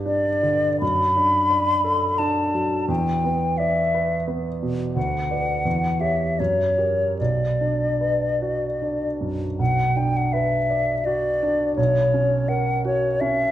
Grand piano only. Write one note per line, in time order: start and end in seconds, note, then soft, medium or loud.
0.00 0.77 G2 soft
0.00 0.05 D4 soft
0.00 0.28 G4 soft
0.00 0.84 B4 soft
0.05 0.66 D4 soft
0.43 0.81 D3 soft
0.82 2.85 F#2 soft
1.17 1.71 D4 soft
1.50 2.05 D5 soft
1.84 2.40 A4 soft
2.19 2.75 D4 soft
2.54 2.89 F#3 soft
2.88 4.91 E2 soft
3.24 3.79 B3 soft
3.59 4.14 D5 soft
3.94 4.48 B4 soft
4.28 4.82 B3 soft
4.63 4.96 B2 soft
4.96 5.63 D2 soft
5.31 5.62 B4 soft
5.31 5.62 D5 soft
5.65 6.36 E2 soft
6.01 6.35 G4 soft
6.01 6.35 C#5 soft
6.40 7.17 F#2 soft
6.78 7.15 G4 soft
6.78 7.15 A#4 soft
7.20 9.56 B1 soft
7.61 8.25 D4 soft
8.01 8.65 B4 soft
8.42 9.05 F#4 soft
8.82 9.45 D4 soft
9.21 9.60 F#2 soft
9.59 11.74 B1 soft
9.96 10.55 D4 soft
10.34 10.92 B4 soft
10.70 11.28 D5 soft
11.06 11.63 F#4 soft
11.43 11.78 D4 soft
11.77 13.52 B1 soft
12.14 12.71 C#4 soft
12.49 13.07 A#4 soft
12.85 13.43 F#4 soft
13.21 13.52 C#4 soft